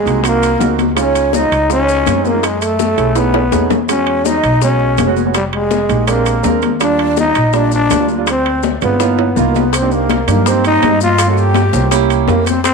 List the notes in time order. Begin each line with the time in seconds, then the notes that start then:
Already playing: G#3 G#4
0.05 C2 A#3 C4 D#4 F#4, high bongo, high conga, high timbale, maracas
0.23 A#3 C4 D#4 F#4, high bongo, high conga, high timbale, maracas
0.27 A#4
0.42 high bongo, high conga, high timbale, maracas
0.59 C#2 A#3 C4 D#4 F#4, high bongo, low bongo, high conga, low timbale, maracas
0.78 high bongo, high conga, high timbale, maracas
0.95 G#3 C#4 D#4 F4 C#5, high bongo, high timbale, maracas
1.15 high conga, high timbale, maracas
1.33 D#4 D#5, high bongo, high conga, low timbale, maracas
1.52 C#2, high bongo, high timbale, maracas
1.69 G#3 C#4 D#4 F4, high bongo, high conga, maracas
1.73 C#5
1.88 high bongo, high conga, maracas
2.06 F#2, high bongo, low bongo, high conga, high timbale, low timbale, maracas
2.15 G#3 C4 D#4 G#4
2.24 A#3 A#4, high bongo, high conga, maracas
2.33 G#3 C4 D#4 F4
2.43 G#3 G#4, high bongo, high conga, high timbale, maracas
2.61 A3 A4, high conga, high timbale, maracas
2.79 high bongo, high conga, low timbale, maracas
2.96 B1 A3 C#4 E4 G#4, high bongo, high conga, high timbale, maracas
3.15 A3 B3 C#4 D#4 G#4 B4, high bongo, high conga, high timbale, maracas
3.34 high bongo, high conga, high timbale
3.51 E2 A3 C#4 D#4 G#4, high bongo, high conga, low timbale, maracas
3.70 low bongo, high conga, low timbale, maracas
3.88 G#3 B3 C#4 F#4 C#5, high bongo, high conga, high timbale, maracas
4.07 high conga, high timbale
4.25 D#4 D#5, high bongo, high conga, low timbale, maracas
4.43 B1, high bongo, high timbale, maracas
4.62 G#3 B3 C#4 F#4 C#5, high bongo, high conga, maracas
4.80 high bongo, high conga
4.98 F1, high bongo, low bongo, high conga, high timbale, low timbale, maracas
5.06 G#3 B3 C#4 F#4
5.16 high bongo, high conga, maracas
5.25 G#3 B3 C#4 F#4
5.34 G3 G4, high bongo, high conga, high timbale, maracas
5.53 G#3 G#4, high conga, high timbale
5.71 high bongo, high conga, low timbale, maracas
5.89 A#1 G#3 A#3 D#4 G4, high bongo, high conga, high timbale, maracas
6.07 G#3 A#3 C4 D4 G4 A#4, high bongo, high conga, high timbale, maracas
6.26 high bongo, high conga, high timbale, maracas
6.43 D#2 G#3 C4 D4 A#4, high bongo, low bongo, high conga, low timbale, maracas
6.62 high bongo, high conga, high timbale, maracas
6.80 G3 A#3 D4 F4 D5, high bongo, high timbale, maracas
6.99 high conga, high timbale
7.17 D#4 D#5, high bongo, high conga, low timbale, maracas
7.35 A#1, high bongo, high timbale, maracas
7.53 G3 A#3 D4 F4 D5, high bongo, high conga, maracas
7.71 D4 D5, high bongo, high conga, maracas
7.90 D2, high bongo, low bongo, high conga, high timbale, low timbale, maracas
7.99 G3 A#3 D4 F4
8.08 high bongo, maracas
8.17 G3 A#3 D4 F4
8.27 C4 C5, high bongo, high timbale, maracas
8.46 high conga, high timbale
8.63 high bongo, high conga, low timbale, maracas
8.81 G1 G#3 B3 C4 D4 F4 B4, high bongo, high conga, high timbale, maracas
8.99 A#3 B3 D#4 F4, high bongo, high conga, high timbale, maracas
9.18 high bongo, high conga, high timbale
9.36 C2 A#3 B3 D#4 F4 A#4, high bongo, low bongo, high conga, maracas
9.54 B3 B4, high bongo, high conga, low timbale, maracas
9.73 C4 C5, high bongo, high conga, high timbale, maracas
9.81 A#3 D4 D#4 G4
9.91 A#3 A#4, high conga, maracas
10.10 high bongo, high conga, high timbale, low timbale, maracas
10.27 G2 A#3 D4 D#4 G4 A#4, high bongo, high conga, low conga, high timbale, maracas
10.45 A#3 C4 D#4 G4 C5, high bongo, high conga, maracas
10.64 D#4 D#5, high bongo, high timbale, maracas
10.82 high bongo, low bongo, high conga, high timbale, low timbale, maracas
11.01 F4 F5, high bongo, high conga, maracas
11.19 high bongo, high timbale, maracas
11.27 A#3 C#4 F4 F#4 A4 F#5
11.37 G4 G5, high conga, maracas
11.54 high bongo, high conga, high timbale, low timbale, maracas
11.72 C2 A#3 C#4 F4 C5, high bongo, high conga, maracas
11.91 A#3 C#4 E4 G4, high bongo, high conga, high timbale, maracas
12.10 high bongo, high conga, high timbale, maracas
12.28 F2 A#3 A#4, high bongo, low bongo, high conga, low timbale, maracas
12.45 C4 C5, high bongo, high conga, high timbale, maracas
12.64 C4 C5, high bongo, high conga, high timbale, maracas